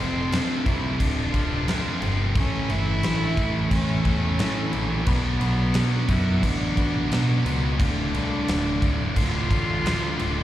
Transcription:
Already playing: F2 C3 F3 A3 C4 F4 A4 C5 A5 C6
0.00 F1 C3 F3
0.32 F2 C3 F3, snare, crash
0.65 C2 F2 C3 F3 E4, kick, crash
0.99 D1 F2 C3 F3 D4, kick, crash
1.33 F2 C3 F3 A3 C4 F4, kick, crash
1.66 F2 C3 F3 A3 C4 F4, snare, crash
2.02 G1 F2 C3 F3, crash
2.35 A1 A2 E3 A3 C#4 E4 A4 C#5 E5 C#6, kick, crash
2.69 G1 A2 E3 A3 E4, crash
3.03 A1 A2 E3 A3, snare, crash
3.37 A1 A2 E3 A3, kick, crash
3.70 A1 A2 E3 A3 C#4, kick, crash
4.03 E2 A2 E3 A3 C#4 E4 A4, kick, crash
4.38 A2 E3 A3 C#4 E4 A4, snare, crash
4.71 A#1 A2 E3 A3 A#3, crash
5.05 B1 B2 F#3 B3 D4 F#4 B4 D5 F#5 D6, kick, crash
5.39 B1 B2 F#3 B3, crash
5.73 B2 F#3 B3, snare, crash
6.08 F#2 B2 F#3 B3 E4, kick, crash
6.43 A1 B2 F#3 B3 D4, kick, crash
6.76 B2 F#3 B3 D4 F#4 B4, kick, crash
7.09 B2 F#3 B3 D4 F#4 B4, snare, crash
7.45 C#2 B2 F#3 B3, crash
7.78 D1 D2 A2 D3 A3 D4 F4 A4 D5 F5 D6, kick, crash
8.13 C2 D2 A2 D3, crash
8.48 D1 D2 A2 D3, snare, crash
8.82 D1 D2 A2 D3, kick, crash
9.15 D1 D2 A2 D3 F4, kick, crash
9.49 A1 D2 A2 D3 A3 F4, kick, crash
9.84 D2 A2 D3 A3 F4, snare, crash
10.19 D1 D2 A2 D3, crash

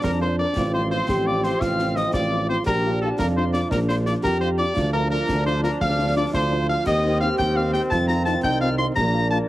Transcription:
Already playing: F3 D4
0.03 F2 A#4 A#5, concert bass drum, snare
0.21 D4 F4 A#4 C5 C6
0.38 D4 F4 A#4 D5 D6
0.55 A1 F3 C4 F4, concert bass drum, snare, crash
0.73 C4 F4 C5 C6
0.91 C4 F4 C5 C6
1.08 A1 G4, concert bass drum, snare
1.25 C4 F4 D5 D6
1.44 C4 F4 C5 C6, snare
1.61 A1 F4 F5 F6, concert bass drum, snare
1.79 C4 F4, snare
1.96 C4 F4 D#5 D#6, snare
2.13 A1 F4 D5 D6, concert bass drum, snare
2.31 C4 F4
2.49 C4 F4 C5 C6
2.66 A#1 F3 D4 G4 A#4 A#5, concert bass drum, snare, crash
2.84 D4 F4
3.01 D4 F4 A4 A5
3.19 F2 F4 A#4 A#5, concert bass drum, snare
3.37 D4 F4 C5 C6
3.53 D4 F4 D5 D6, snare
3.70 A#1 D4 A#4 A#5, concert bass drum, snare
3.88 D4 F4 C5 C6, snare
4.06 D4 F4 D5 D6, snare
4.23 F2 G4 A#4 A#5, concert bass drum, snare
4.41 D4 F4 C5 C6
4.58 D4 F4 D5 D6
4.74 D2 F3 D4 F4, concert bass drum, snare, crash
4.93 D4 F4 A#4 A#5
5.11 D4 F4 A#4 A#5
5.29 D2, concert bass drum, snare
5.46 D4 F4 C5 C6
5.63 D4 F4 A#4 A#5, snare
5.81 D2 D4 F5 F6, concert bass drum, snare
5.98 D4 F4
6.16 D4 F4 D5 D6
6.33 D2 F4 C5 C6, concert bass drum, snare
6.50 D4 F4
6.68 D4 F4 F5 F6
6.86 D#2 D#3 C4 G4 D#5 D#6, concert bass drum, snare, crash
7.04 C4 D#4 G4
7.21 C4 D#4 G4 F5 F6
7.38 D#2 G5 G6, concert bass drum, snare
7.55 C4 D#4 G4 F5 F6
7.73 C4 D#4 G4 G5 G6, snare
7.90 F2 F4 A5 A6, concert bass drum, snare
8.07 C4 D#4 F4 A#5 A#6, snare
8.25 C4 D#4 F4 A5 A6, snare
8.43 C2 D#4 G5 G6, concert bass drum, snare
8.61 C4 D#4 F4 F5 F6
8.78 C4 D#4 F4 C6 C7
8.95 A#1 F3 A#3 D4 A#5 A#6, concert bass drum, snare, crash
9.14 A#3 D4 F4
9.31 A#3 D4 F4 A5 A6

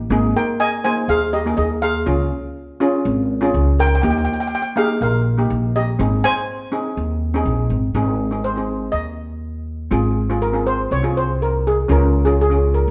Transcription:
0.10 G#1 A#3 D#4 G#4
0.36 A#4 G5
0.60 D#5 G#5
0.84 A#3 D#4 G#4 C5 G#5
1.08 D#2 G#4 F5
1.33 G4 D#5
1.46 A#3 D#4 G#4
1.57 D#2 G#4 D#5
1.82 G#4 F5
2.06 C#2 C#4 F4 G#4
2.80 C#4 F4 G#4
3.05 G#1
3.41 C#4 F4 G#4
3.54 C#2
3.79 A#4 G5
3.87 G5
3.95 G5
4.02 D#2 A#3 D#4 G4 G5
4.10 G5
4.18 G5
4.25 G5
4.33 G5
4.40 G5
4.47 G5
4.55 G5
4.62 G5
4.76 A#3 D#4 G4 G#4 F5
5.01 A#1 A#4 F5
5.38 A#3 D#4 G4
5.50 A#1
5.76 G4 D#5
5.99 G#1 C4 D#4 G#4
6.24 C5 G#5
6.72 C4 D#4 G#4
6.97 D#2
7.34 C4 D#4 G#4
7.46 A#1
7.70 G#1
7.95 G#1 C4 D#4 G#4
8.31 C4 D#4 G#4
8.44 C5
8.56 C4 D#4 G#4
8.92 D#2 D#5
9.91 G#1 C4 F4 G#4
10.29 C4 F4 G#4
10.42 A#4
10.53 C4 F4 G#4
10.67 C5
10.91 C2 C#5
11.03 C4 F4 G#4
11.17 C5
11.42 A#4
11.67 G#4
11.88 C#2 C#4 F4 G#4 A#4
12.25 C#4 F4 G#4
12.41 G#4
12.50 C#4 F4 G#4
12.74 A#4
12.88 G#1

